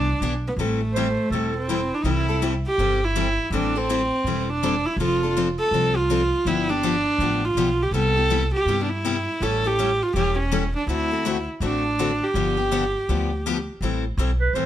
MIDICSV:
0, 0, Header, 1, 5, 480
1, 0, Start_track
1, 0, Key_signature, 0, "major"
1, 0, Tempo, 367647
1, 757, Time_signature, 4, 2, 24, 8
1, 19137, End_track
2, 0, Start_track
2, 0, Title_t, "Clarinet"
2, 0, Program_c, 0, 71
2, 1226, Note_on_c, 0, 72, 87
2, 1675, Note_off_c, 0, 72, 0
2, 1711, Note_on_c, 0, 69, 88
2, 2198, Note_on_c, 0, 64, 71
2, 2217, Note_off_c, 0, 69, 0
2, 2674, Note_off_c, 0, 64, 0
2, 18809, Note_on_c, 0, 71, 78
2, 18991, Note_on_c, 0, 72, 73
2, 19011, Note_off_c, 0, 71, 0
2, 19137, Note_off_c, 0, 72, 0
2, 19137, End_track
3, 0, Start_track
3, 0, Title_t, "Viola"
3, 0, Program_c, 1, 41
3, 0, Note_on_c, 1, 62, 98
3, 299, Note_off_c, 1, 62, 0
3, 625, Note_on_c, 1, 59, 76
3, 697, Note_off_c, 1, 59, 0
3, 808, Note_on_c, 1, 57, 74
3, 1980, Note_off_c, 1, 57, 0
3, 2055, Note_on_c, 1, 60, 79
3, 2538, Note_on_c, 1, 62, 68
3, 2557, Note_off_c, 1, 60, 0
3, 2637, Note_on_c, 1, 63, 59
3, 2657, Note_off_c, 1, 62, 0
3, 2746, Note_on_c, 1, 64, 81
3, 2765, Note_off_c, 1, 63, 0
3, 3188, Note_off_c, 1, 64, 0
3, 3493, Note_on_c, 1, 67, 91
3, 3974, Note_on_c, 1, 64, 90
3, 3993, Note_off_c, 1, 67, 0
3, 4614, Note_off_c, 1, 64, 0
3, 4636, Note_on_c, 1, 62, 83
3, 4928, Note_on_c, 1, 60, 93
3, 4947, Note_off_c, 1, 62, 0
3, 5757, Note_off_c, 1, 60, 0
3, 5757, Note_on_c, 1, 60, 64
3, 5871, Note_on_c, 1, 62, 91
3, 5890, Note_off_c, 1, 60, 0
3, 6341, Note_on_c, 1, 64, 87
3, 6360, Note_off_c, 1, 62, 0
3, 6518, Note_off_c, 1, 64, 0
3, 6550, Note_on_c, 1, 65, 97
3, 6978, Note_off_c, 1, 65, 0
3, 7309, Note_on_c, 1, 69, 104
3, 7790, Note_on_c, 1, 65, 98
3, 7809, Note_off_c, 1, 69, 0
3, 8454, Note_on_c, 1, 64, 93
3, 8473, Note_off_c, 1, 65, 0
3, 8749, Note_on_c, 1, 62, 98
3, 8769, Note_off_c, 1, 64, 0
3, 9725, Note_on_c, 1, 65, 94
3, 9744, Note_off_c, 1, 62, 0
3, 10212, Note_on_c, 1, 67, 83
3, 10232, Note_off_c, 1, 65, 0
3, 10378, Note_off_c, 1, 67, 0
3, 10390, Note_on_c, 1, 69, 99
3, 11097, Note_off_c, 1, 69, 0
3, 11162, Note_on_c, 1, 67, 91
3, 11491, Note_off_c, 1, 67, 0
3, 11529, Note_on_c, 1, 62, 63
3, 11617, Note_on_c, 1, 64, 85
3, 11637, Note_off_c, 1, 62, 0
3, 12307, Note_on_c, 1, 69, 88
3, 12327, Note_off_c, 1, 64, 0
3, 12619, Note_on_c, 1, 67, 97
3, 12639, Note_off_c, 1, 69, 0
3, 13087, Note_on_c, 1, 65, 90
3, 13107, Note_off_c, 1, 67, 0
3, 13259, Note_off_c, 1, 65, 0
3, 13269, Note_on_c, 1, 67, 91
3, 13531, Note_off_c, 1, 67, 0
3, 13562, Note_on_c, 1, 61, 85
3, 13997, Note_off_c, 1, 61, 0
3, 14050, Note_on_c, 1, 62, 81
3, 14208, Note_off_c, 1, 62, 0
3, 14245, Note_on_c, 1, 64, 90
3, 14947, Note_off_c, 1, 64, 0
3, 15196, Note_on_c, 1, 62, 88
3, 15975, Note_on_c, 1, 67, 86
3, 15995, Note_off_c, 1, 62, 0
3, 17581, Note_off_c, 1, 67, 0
3, 19137, End_track
4, 0, Start_track
4, 0, Title_t, "Steel-string acoustic guitar"
4, 0, Program_c, 2, 25
4, 286, Note_on_c, 2, 52, 72
4, 288, Note_on_c, 2, 59, 78
4, 295, Note_on_c, 2, 62, 93
4, 299, Note_on_c, 2, 68, 84
4, 427, Note_off_c, 2, 52, 0
4, 427, Note_off_c, 2, 59, 0
4, 431, Note_off_c, 2, 62, 0
4, 433, Note_off_c, 2, 68, 0
4, 768, Note_on_c, 2, 52, 59
4, 772, Note_on_c, 2, 55, 59
4, 776, Note_on_c, 2, 60, 63
4, 779, Note_on_c, 2, 64, 65
4, 781, Note_on_c, 2, 69, 75
4, 1035, Note_off_c, 2, 52, 0
4, 1037, Note_off_c, 2, 55, 0
4, 1039, Note_off_c, 2, 60, 0
4, 1040, Note_off_c, 2, 64, 0
4, 1041, Note_off_c, 2, 69, 0
4, 1254, Note_on_c, 2, 52, 75
4, 1259, Note_on_c, 2, 60, 81
4, 1260, Note_on_c, 2, 55, 77
4, 1261, Note_on_c, 2, 69, 86
4, 1266, Note_on_c, 2, 64, 84
4, 1389, Note_off_c, 2, 52, 0
4, 1391, Note_off_c, 2, 60, 0
4, 1392, Note_off_c, 2, 55, 0
4, 1392, Note_off_c, 2, 69, 0
4, 1395, Note_off_c, 2, 64, 0
4, 1728, Note_on_c, 2, 52, 54
4, 1732, Note_on_c, 2, 55, 52
4, 1736, Note_on_c, 2, 64, 61
4, 1739, Note_on_c, 2, 60, 57
4, 1747, Note_on_c, 2, 69, 57
4, 1993, Note_off_c, 2, 52, 0
4, 1996, Note_off_c, 2, 55, 0
4, 1997, Note_off_c, 2, 64, 0
4, 1999, Note_off_c, 2, 60, 0
4, 2003, Note_off_c, 2, 69, 0
4, 2205, Note_on_c, 2, 52, 68
4, 2208, Note_on_c, 2, 55, 74
4, 2211, Note_on_c, 2, 60, 80
4, 2217, Note_on_c, 2, 64, 82
4, 2220, Note_on_c, 2, 69, 92
4, 2343, Note_off_c, 2, 52, 0
4, 2344, Note_off_c, 2, 55, 0
4, 2346, Note_off_c, 2, 60, 0
4, 2349, Note_off_c, 2, 64, 0
4, 2351, Note_off_c, 2, 69, 0
4, 2669, Note_on_c, 2, 48, 62
4, 2676, Note_on_c, 2, 52, 59
4, 2678, Note_on_c, 2, 55, 68
4, 2681, Note_on_c, 2, 64, 65
4, 2683, Note_on_c, 2, 60, 62
4, 2685, Note_on_c, 2, 69, 68
4, 2943, Note_off_c, 2, 48, 0
4, 2946, Note_off_c, 2, 52, 0
4, 2947, Note_off_c, 2, 55, 0
4, 2949, Note_off_c, 2, 64, 0
4, 2950, Note_off_c, 2, 60, 0
4, 2951, Note_off_c, 2, 69, 0
4, 2982, Note_on_c, 2, 69, 52
4, 2990, Note_on_c, 2, 64, 50
4, 2998, Note_on_c, 2, 60, 45
4, 3001, Note_on_c, 2, 55, 39
4, 3146, Note_off_c, 2, 55, 0
4, 3149, Note_off_c, 2, 60, 0
4, 3152, Note_off_c, 2, 64, 0
4, 3152, Note_off_c, 2, 69, 0
4, 3156, Note_on_c, 2, 48, 72
4, 3161, Note_on_c, 2, 52, 77
4, 3162, Note_on_c, 2, 55, 84
4, 3165, Note_on_c, 2, 60, 78
4, 3167, Note_on_c, 2, 64, 86
4, 3168, Note_on_c, 2, 69, 84
4, 3298, Note_off_c, 2, 48, 0
4, 3301, Note_off_c, 2, 52, 0
4, 3301, Note_off_c, 2, 55, 0
4, 3302, Note_off_c, 2, 60, 0
4, 3304, Note_off_c, 2, 64, 0
4, 3304, Note_off_c, 2, 69, 0
4, 3641, Note_on_c, 2, 48, 62
4, 3643, Note_on_c, 2, 52, 56
4, 3647, Note_on_c, 2, 55, 62
4, 3650, Note_on_c, 2, 64, 61
4, 3652, Note_on_c, 2, 60, 64
4, 3657, Note_on_c, 2, 69, 63
4, 3909, Note_off_c, 2, 48, 0
4, 3910, Note_off_c, 2, 52, 0
4, 3911, Note_off_c, 2, 55, 0
4, 3913, Note_off_c, 2, 64, 0
4, 3914, Note_off_c, 2, 60, 0
4, 3917, Note_off_c, 2, 69, 0
4, 4117, Note_on_c, 2, 48, 78
4, 4121, Note_on_c, 2, 52, 88
4, 4122, Note_on_c, 2, 55, 86
4, 4125, Note_on_c, 2, 64, 80
4, 4127, Note_on_c, 2, 60, 82
4, 4130, Note_on_c, 2, 69, 94
4, 4258, Note_off_c, 2, 48, 0
4, 4260, Note_off_c, 2, 52, 0
4, 4261, Note_off_c, 2, 55, 0
4, 4262, Note_off_c, 2, 64, 0
4, 4263, Note_off_c, 2, 60, 0
4, 4264, Note_off_c, 2, 69, 0
4, 4601, Note_on_c, 2, 52, 67
4, 4606, Note_on_c, 2, 55, 69
4, 4613, Note_on_c, 2, 64, 72
4, 4615, Note_on_c, 2, 60, 65
4, 4616, Note_on_c, 2, 69, 77
4, 4868, Note_off_c, 2, 52, 0
4, 4871, Note_off_c, 2, 55, 0
4, 4874, Note_off_c, 2, 64, 0
4, 4876, Note_off_c, 2, 60, 0
4, 4876, Note_off_c, 2, 69, 0
4, 4903, Note_on_c, 2, 69, 53
4, 4909, Note_on_c, 2, 64, 49
4, 4918, Note_on_c, 2, 60, 43
4, 5071, Note_off_c, 2, 69, 0
4, 5075, Note_off_c, 2, 60, 0
4, 5075, Note_off_c, 2, 64, 0
4, 5085, Note_on_c, 2, 52, 81
4, 5091, Note_on_c, 2, 55, 82
4, 5091, Note_on_c, 2, 60, 86
4, 5094, Note_on_c, 2, 64, 87
4, 5097, Note_on_c, 2, 69, 88
4, 5222, Note_off_c, 2, 52, 0
4, 5225, Note_off_c, 2, 55, 0
4, 5225, Note_off_c, 2, 60, 0
4, 5226, Note_off_c, 2, 64, 0
4, 5228, Note_off_c, 2, 69, 0
4, 5570, Note_on_c, 2, 52, 61
4, 5574, Note_on_c, 2, 60, 65
4, 5575, Note_on_c, 2, 55, 60
4, 5582, Note_on_c, 2, 64, 60
4, 5582, Note_on_c, 2, 69, 67
4, 5833, Note_off_c, 2, 52, 0
4, 5835, Note_off_c, 2, 60, 0
4, 5836, Note_off_c, 2, 55, 0
4, 5839, Note_off_c, 2, 64, 0
4, 5839, Note_off_c, 2, 69, 0
4, 6042, Note_on_c, 2, 52, 78
4, 6050, Note_on_c, 2, 55, 83
4, 6050, Note_on_c, 2, 60, 91
4, 6053, Note_on_c, 2, 64, 92
4, 6054, Note_on_c, 2, 69, 86
4, 6181, Note_off_c, 2, 52, 0
4, 6185, Note_off_c, 2, 55, 0
4, 6185, Note_off_c, 2, 60, 0
4, 6186, Note_off_c, 2, 64, 0
4, 6187, Note_off_c, 2, 69, 0
4, 6525, Note_on_c, 2, 53, 63
4, 6531, Note_on_c, 2, 60, 64
4, 6532, Note_on_c, 2, 62, 74
4, 6536, Note_on_c, 2, 69, 72
4, 6791, Note_off_c, 2, 53, 0
4, 6794, Note_off_c, 2, 60, 0
4, 6795, Note_off_c, 2, 62, 0
4, 6797, Note_off_c, 2, 69, 0
4, 6827, Note_on_c, 2, 69, 54
4, 6842, Note_on_c, 2, 62, 49
4, 6852, Note_on_c, 2, 60, 39
4, 6994, Note_off_c, 2, 60, 0
4, 6994, Note_off_c, 2, 69, 0
4, 6998, Note_off_c, 2, 62, 0
4, 7006, Note_on_c, 2, 53, 89
4, 7010, Note_on_c, 2, 60, 82
4, 7014, Note_on_c, 2, 62, 90
4, 7015, Note_on_c, 2, 69, 82
4, 7143, Note_off_c, 2, 53, 0
4, 7145, Note_off_c, 2, 60, 0
4, 7147, Note_off_c, 2, 62, 0
4, 7148, Note_off_c, 2, 69, 0
4, 7491, Note_on_c, 2, 53, 61
4, 7492, Note_on_c, 2, 60, 68
4, 7494, Note_on_c, 2, 62, 70
4, 7504, Note_on_c, 2, 69, 71
4, 7755, Note_off_c, 2, 53, 0
4, 7755, Note_off_c, 2, 60, 0
4, 7756, Note_off_c, 2, 62, 0
4, 7761, Note_off_c, 2, 69, 0
4, 7962, Note_on_c, 2, 53, 81
4, 7967, Note_on_c, 2, 60, 83
4, 7970, Note_on_c, 2, 62, 83
4, 7978, Note_on_c, 2, 69, 91
4, 8102, Note_off_c, 2, 53, 0
4, 8105, Note_off_c, 2, 60, 0
4, 8106, Note_off_c, 2, 62, 0
4, 8110, Note_off_c, 2, 69, 0
4, 8439, Note_on_c, 2, 50, 61
4, 8442, Note_on_c, 2, 53, 68
4, 8444, Note_on_c, 2, 59, 72
4, 8447, Note_on_c, 2, 62, 69
4, 8452, Note_on_c, 2, 67, 76
4, 8710, Note_off_c, 2, 50, 0
4, 8711, Note_off_c, 2, 53, 0
4, 8712, Note_off_c, 2, 59, 0
4, 8714, Note_off_c, 2, 62, 0
4, 8716, Note_off_c, 2, 67, 0
4, 8733, Note_on_c, 2, 67, 51
4, 8743, Note_on_c, 2, 62, 48
4, 8751, Note_on_c, 2, 59, 44
4, 8909, Note_off_c, 2, 67, 0
4, 8911, Note_off_c, 2, 59, 0
4, 8914, Note_off_c, 2, 62, 0
4, 8921, Note_on_c, 2, 50, 89
4, 8922, Note_on_c, 2, 53, 89
4, 8927, Note_on_c, 2, 59, 75
4, 8930, Note_on_c, 2, 62, 83
4, 8936, Note_on_c, 2, 67, 83
4, 9063, Note_off_c, 2, 50, 0
4, 9063, Note_off_c, 2, 53, 0
4, 9065, Note_off_c, 2, 59, 0
4, 9067, Note_off_c, 2, 62, 0
4, 9070, Note_off_c, 2, 67, 0
4, 9404, Note_on_c, 2, 50, 65
4, 9410, Note_on_c, 2, 53, 62
4, 9416, Note_on_c, 2, 59, 62
4, 9420, Note_on_c, 2, 62, 64
4, 9420, Note_on_c, 2, 67, 68
4, 9673, Note_off_c, 2, 50, 0
4, 9676, Note_off_c, 2, 53, 0
4, 9679, Note_off_c, 2, 59, 0
4, 9681, Note_off_c, 2, 62, 0
4, 9681, Note_off_c, 2, 67, 0
4, 9883, Note_on_c, 2, 50, 79
4, 9886, Note_on_c, 2, 53, 83
4, 9892, Note_on_c, 2, 59, 80
4, 9893, Note_on_c, 2, 62, 89
4, 9895, Note_on_c, 2, 67, 91
4, 10025, Note_off_c, 2, 50, 0
4, 10026, Note_off_c, 2, 53, 0
4, 10029, Note_off_c, 2, 59, 0
4, 10029, Note_off_c, 2, 62, 0
4, 10031, Note_off_c, 2, 67, 0
4, 10362, Note_on_c, 2, 48, 66
4, 10368, Note_on_c, 2, 55, 67
4, 10370, Note_on_c, 2, 59, 65
4, 10374, Note_on_c, 2, 64, 66
4, 10377, Note_on_c, 2, 67, 73
4, 10634, Note_off_c, 2, 48, 0
4, 10636, Note_off_c, 2, 55, 0
4, 10638, Note_off_c, 2, 59, 0
4, 10639, Note_off_c, 2, 64, 0
4, 10641, Note_off_c, 2, 67, 0
4, 10655, Note_on_c, 2, 67, 49
4, 10668, Note_on_c, 2, 64, 48
4, 10674, Note_on_c, 2, 59, 42
4, 10828, Note_off_c, 2, 59, 0
4, 10833, Note_off_c, 2, 67, 0
4, 10835, Note_off_c, 2, 64, 0
4, 10838, Note_on_c, 2, 48, 86
4, 10843, Note_on_c, 2, 59, 81
4, 10844, Note_on_c, 2, 55, 88
4, 10850, Note_on_c, 2, 64, 81
4, 10852, Note_on_c, 2, 67, 86
4, 10983, Note_off_c, 2, 48, 0
4, 10986, Note_off_c, 2, 55, 0
4, 10986, Note_off_c, 2, 59, 0
4, 10989, Note_off_c, 2, 64, 0
4, 10990, Note_off_c, 2, 67, 0
4, 11330, Note_on_c, 2, 48, 61
4, 11336, Note_on_c, 2, 55, 69
4, 11340, Note_on_c, 2, 59, 61
4, 11341, Note_on_c, 2, 64, 59
4, 11347, Note_on_c, 2, 67, 70
4, 11599, Note_off_c, 2, 48, 0
4, 11602, Note_off_c, 2, 55, 0
4, 11604, Note_off_c, 2, 59, 0
4, 11604, Note_off_c, 2, 64, 0
4, 11607, Note_off_c, 2, 67, 0
4, 11811, Note_on_c, 2, 48, 82
4, 11816, Note_on_c, 2, 55, 82
4, 11820, Note_on_c, 2, 59, 85
4, 11822, Note_on_c, 2, 64, 81
4, 11826, Note_on_c, 2, 67, 86
4, 11951, Note_off_c, 2, 48, 0
4, 11953, Note_off_c, 2, 55, 0
4, 11955, Note_off_c, 2, 59, 0
4, 11956, Note_off_c, 2, 64, 0
4, 11958, Note_off_c, 2, 67, 0
4, 12298, Note_on_c, 2, 52, 67
4, 12307, Note_on_c, 2, 61, 74
4, 12308, Note_on_c, 2, 55, 65
4, 12309, Note_on_c, 2, 69, 68
4, 12313, Note_on_c, 2, 64, 78
4, 12564, Note_off_c, 2, 52, 0
4, 12568, Note_off_c, 2, 55, 0
4, 12568, Note_off_c, 2, 61, 0
4, 12569, Note_off_c, 2, 69, 0
4, 12571, Note_off_c, 2, 64, 0
4, 12589, Note_on_c, 2, 69, 54
4, 12603, Note_on_c, 2, 64, 44
4, 12611, Note_on_c, 2, 61, 42
4, 12762, Note_off_c, 2, 69, 0
4, 12769, Note_off_c, 2, 64, 0
4, 12770, Note_off_c, 2, 61, 0
4, 12778, Note_on_c, 2, 52, 90
4, 12785, Note_on_c, 2, 61, 80
4, 12788, Note_on_c, 2, 55, 79
4, 12791, Note_on_c, 2, 64, 90
4, 12792, Note_on_c, 2, 69, 84
4, 12915, Note_off_c, 2, 52, 0
4, 12919, Note_off_c, 2, 61, 0
4, 12920, Note_off_c, 2, 55, 0
4, 12922, Note_off_c, 2, 64, 0
4, 12922, Note_off_c, 2, 69, 0
4, 13262, Note_on_c, 2, 52, 61
4, 13263, Note_on_c, 2, 55, 62
4, 13266, Note_on_c, 2, 61, 69
4, 13274, Note_on_c, 2, 69, 66
4, 13275, Note_on_c, 2, 64, 66
4, 13526, Note_off_c, 2, 52, 0
4, 13527, Note_off_c, 2, 55, 0
4, 13529, Note_off_c, 2, 61, 0
4, 13532, Note_off_c, 2, 69, 0
4, 13533, Note_off_c, 2, 64, 0
4, 13729, Note_on_c, 2, 52, 88
4, 13736, Note_on_c, 2, 55, 85
4, 13739, Note_on_c, 2, 61, 90
4, 13739, Note_on_c, 2, 64, 90
4, 13739, Note_on_c, 2, 69, 85
4, 13871, Note_off_c, 2, 52, 0
4, 13875, Note_off_c, 2, 55, 0
4, 13876, Note_off_c, 2, 61, 0
4, 13876, Note_off_c, 2, 64, 0
4, 13877, Note_off_c, 2, 69, 0
4, 14214, Note_on_c, 2, 50, 70
4, 14222, Note_on_c, 2, 60, 68
4, 14224, Note_on_c, 2, 57, 65
4, 14230, Note_on_c, 2, 66, 73
4, 14231, Note_on_c, 2, 69, 74
4, 14483, Note_off_c, 2, 50, 0
4, 14487, Note_off_c, 2, 60, 0
4, 14488, Note_off_c, 2, 57, 0
4, 14491, Note_off_c, 2, 66, 0
4, 14491, Note_off_c, 2, 69, 0
4, 14507, Note_on_c, 2, 69, 53
4, 14518, Note_on_c, 2, 66, 49
4, 14528, Note_on_c, 2, 60, 46
4, 14681, Note_off_c, 2, 69, 0
4, 14685, Note_off_c, 2, 60, 0
4, 14687, Note_off_c, 2, 66, 0
4, 14687, Note_on_c, 2, 50, 88
4, 14694, Note_on_c, 2, 57, 84
4, 14701, Note_on_c, 2, 60, 88
4, 14706, Note_on_c, 2, 66, 100
4, 14709, Note_on_c, 2, 69, 96
4, 14831, Note_off_c, 2, 50, 0
4, 14834, Note_off_c, 2, 57, 0
4, 14838, Note_off_c, 2, 60, 0
4, 14840, Note_off_c, 2, 66, 0
4, 14842, Note_off_c, 2, 69, 0
4, 15163, Note_on_c, 2, 50, 65
4, 15168, Note_on_c, 2, 57, 71
4, 15168, Note_on_c, 2, 60, 68
4, 15178, Note_on_c, 2, 66, 68
4, 15178, Note_on_c, 2, 69, 69
4, 15437, Note_off_c, 2, 50, 0
4, 15440, Note_off_c, 2, 57, 0
4, 15440, Note_off_c, 2, 60, 0
4, 15445, Note_off_c, 2, 66, 0
4, 15445, Note_off_c, 2, 69, 0
4, 15653, Note_on_c, 2, 50, 83
4, 15658, Note_on_c, 2, 57, 89
4, 15661, Note_on_c, 2, 60, 91
4, 15661, Note_on_c, 2, 66, 92
4, 15669, Note_on_c, 2, 69, 93
4, 15794, Note_off_c, 2, 50, 0
4, 15796, Note_off_c, 2, 57, 0
4, 15797, Note_off_c, 2, 60, 0
4, 15798, Note_off_c, 2, 66, 0
4, 15801, Note_off_c, 2, 69, 0
4, 16128, Note_on_c, 2, 50, 73
4, 16133, Note_on_c, 2, 53, 63
4, 16137, Note_on_c, 2, 59, 65
4, 16137, Note_on_c, 2, 62, 75
4, 16137, Note_on_c, 2, 67, 80
4, 16398, Note_off_c, 2, 67, 0
4, 16399, Note_off_c, 2, 50, 0
4, 16402, Note_off_c, 2, 53, 0
4, 16404, Note_off_c, 2, 59, 0
4, 16404, Note_off_c, 2, 62, 0
4, 16414, Note_on_c, 2, 67, 54
4, 16426, Note_on_c, 2, 62, 46
4, 16435, Note_on_c, 2, 59, 41
4, 16593, Note_off_c, 2, 59, 0
4, 16595, Note_off_c, 2, 62, 0
4, 16595, Note_off_c, 2, 67, 0
4, 16599, Note_on_c, 2, 50, 79
4, 16604, Note_on_c, 2, 53, 87
4, 16608, Note_on_c, 2, 59, 90
4, 16610, Note_on_c, 2, 62, 90
4, 16614, Note_on_c, 2, 67, 95
4, 16746, Note_off_c, 2, 50, 0
4, 16749, Note_off_c, 2, 53, 0
4, 16751, Note_off_c, 2, 59, 0
4, 16752, Note_off_c, 2, 62, 0
4, 16754, Note_off_c, 2, 67, 0
4, 17090, Note_on_c, 2, 50, 66
4, 17092, Note_on_c, 2, 53, 64
4, 17098, Note_on_c, 2, 59, 63
4, 17101, Note_on_c, 2, 62, 73
4, 17105, Note_on_c, 2, 67, 67
4, 17360, Note_off_c, 2, 50, 0
4, 17361, Note_off_c, 2, 53, 0
4, 17364, Note_off_c, 2, 59, 0
4, 17365, Note_off_c, 2, 62, 0
4, 17367, Note_off_c, 2, 67, 0
4, 17571, Note_on_c, 2, 50, 78
4, 17574, Note_on_c, 2, 53, 85
4, 17580, Note_on_c, 2, 59, 88
4, 17581, Note_on_c, 2, 67, 94
4, 17584, Note_on_c, 2, 62, 88
4, 17711, Note_off_c, 2, 50, 0
4, 17713, Note_off_c, 2, 53, 0
4, 17716, Note_off_c, 2, 59, 0
4, 17716, Note_off_c, 2, 67, 0
4, 17718, Note_off_c, 2, 62, 0
4, 18046, Note_on_c, 2, 52, 63
4, 18053, Note_on_c, 2, 55, 63
4, 18056, Note_on_c, 2, 60, 64
4, 18058, Note_on_c, 2, 64, 74
4, 18065, Note_on_c, 2, 69, 70
4, 18316, Note_off_c, 2, 52, 0
4, 18320, Note_off_c, 2, 55, 0
4, 18321, Note_off_c, 2, 60, 0
4, 18323, Note_off_c, 2, 64, 0
4, 18326, Note_off_c, 2, 69, 0
4, 18518, Note_on_c, 2, 52, 78
4, 18529, Note_on_c, 2, 55, 72
4, 18529, Note_on_c, 2, 60, 81
4, 18534, Note_on_c, 2, 64, 76
4, 18534, Note_on_c, 2, 69, 87
4, 18664, Note_off_c, 2, 52, 0
4, 18669, Note_off_c, 2, 55, 0
4, 18669, Note_off_c, 2, 60, 0
4, 18672, Note_off_c, 2, 64, 0
4, 18672, Note_off_c, 2, 69, 0
4, 18999, Note_on_c, 2, 52, 55
4, 19003, Note_on_c, 2, 55, 59
4, 19006, Note_on_c, 2, 60, 65
4, 19012, Note_on_c, 2, 64, 66
4, 19013, Note_on_c, 2, 69, 58
4, 19137, Note_off_c, 2, 52, 0
4, 19137, Note_off_c, 2, 55, 0
4, 19137, Note_off_c, 2, 60, 0
4, 19137, Note_off_c, 2, 64, 0
4, 19137, Note_off_c, 2, 69, 0
4, 19137, End_track
5, 0, Start_track
5, 0, Title_t, "Upright bass"
5, 0, Program_c, 3, 32
5, 0, Note_on_c, 3, 36, 74
5, 204, Note_off_c, 3, 36, 0
5, 269, Note_on_c, 3, 35, 71
5, 679, Note_off_c, 3, 35, 0
5, 737, Note_on_c, 3, 33, 78
5, 1511, Note_off_c, 3, 33, 0
5, 1699, Note_on_c, 3, 28, 67
5, 2471, Note_off_c, 3, 28, 0
5, 2658, Note_on_c, 3, 36, 81
5, 3430, Note_off_c, 3, 36, 0
5, 3630, Note_on_c, 3, 31, 76
5, 4398, Note_off_c, 3, 31, 0
5, 4575, Note_on_c, 3, 33, 81
5, 5349, Note_off_c, 3, 33, 0
5, 5537, Note_on_c, 3, 28, 71
5, 6311, Note_off_c, 3, 28, 0
5, 6482, Note_on_c, 3, 29, 82
5, 7262, Note_off_c, 3, 29, 0
5, 7459, Note_on_c, 3, 36, 77
5, 8233, Note_off_c, 3, 36, 0
5, 8423, Note_on_c, 3, 31, 79
5, 9197, Note_off_c, 3, 31, 0
5, 9380, Note_on_c, 3, 33, 81
5, 9795, Note_off_c, 3, 33, 0
5, 9858, Note_on_c, 3, 35, 71
5, 10275, Note_off_c, 3, 35, 0
5, 10330, Note_on_c, 3, 36, 81
5, 11111, Note_off_c, 3, 36, 0
5, 11301, Note_on_c, 3, 43, 72
5, 12078, Note_off_c, 3, 43, 0
5, 12280, Note_on_c, 3, 33, 86
5, 13050, Note_off_c, 3, 33, 0
5, 13235, Note_on_c, 3, 28, 76
5, 14008, Note_off_c, 3, 28, 0
5, 14186, Note_on_c, 3, 38, 83
5, 14962, Note_off_c, 3, 38, 0
5, 15150, Note_on_c, 3, 33, 80
5, 15924, Note_off_c, 3, 33, 0
5, 16112, Note_on_c, 3, 31, 86
5, 16884, Note_off_c, 3, 31, 0
5, 17085, Note_on_c, 3, 38, 73
5, 17851, Note_off_c, 3, 38, 0
5, 18025, Note_on_c, 3, 33, 77
5, 18498, Note_off_c, 3, 33, 0
5, 18506, Note_on_c, 3, 35, 88
5, 18966, Note_off_c, 3, 35, 0
5, 18974, Note_on_c, 3, 33, 75
5, 19137, Note_off_c, 3, 33, 0
5, 19137, End_track
0, 0, End_of_file